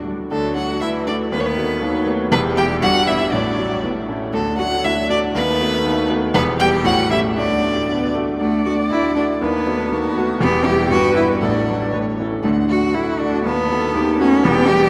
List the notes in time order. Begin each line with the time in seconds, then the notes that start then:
Already playing: D2 D3 A3 D4 F#4
0.06 G3 A3 D4 F#4
0.31 D2 D3 F#3 A3 A4
0.56 A3 D4 F#4 F#5
0.81 D2 D3 E3 E4 E5
1.07 A3 D4 F#4 D5
1.32 D#2 D#3 B3 B4
1.40 C#5
1.46 B4
1.57 A3 B3 F#4
1.81 D#2 D#3 F#3
2.06 A3 B3 F#4
2.32 E1 E2 G3 B3 B4
2.56 G3 B3 E4 G4 G5
2.81 G1 G2 G3 F#4 F#5
3.06 G3 B3 E4 E5
3.31 A1 A2 F#3 D4 D5
3.57 F#3 D4 F#4
3.83 A1 A2 B3
4.08 A3 C#4 E4
4.33 D2 D3 F#3 A3 A4
4.58 A3 D4 F#4 F#5
4.84 D2 D3 E4 E5
5.09 A3 D4 F#4 D5
5.34 D#2 D#3 A3 B3 B4
5.60 A3 B3 F#4
5.85 D#2 D#3
6.10 A3 B3 F#4
6.34 E1 E2 G3 B3 B4
6.59 G3 B3 G4 G5
6.84 A1 A2 F#4 F#5
7.10 A3 C#4 E4 G4 E5
7.36 D2 D3 F#3 D4 D5
7.63 A3 D4 F#4
7.89 D2 D3 B3
8.15 A3 D4 F#4
8.40 D2 D3 A3 D5 F#5
8.65 A3 D4 F#4
8.90 D2 D3 E4
9.16 A3 D4 F#4
9.41 D#2 D#3 B3 B4 A5
9.67 A3 B3 F#4
9.92 D#2 D#3 F#4
10.16 A3 B3 F#4
10.40 E1 E2 B3 G4 G5
10.65 G3 B3 E4 G4
10.91 G1 G2 F#4 B4
11.16 G3 B3 E4
11.41 A1 A2 D4 A4 F#5
11.69 F#3 D4 F#4
11.92 A1 A2 B4 C#5
12.19 A3 C#4 E4 A4
12.43 D2 D3 A3 F#5
12.69 A3 D4 F#4
12.94 D2 D3 E4 F#4
13.19 A3 D4 F#4
13.45 D#2 D#3 B3 B4 A5
13.70 A3 B3 F#4 A4
13.94 D#2 D#3 G4
14.19 A3 B3 C#4 F#4
14.44 E1 E2 B3 G4 G5
14.68 G3 B3 G4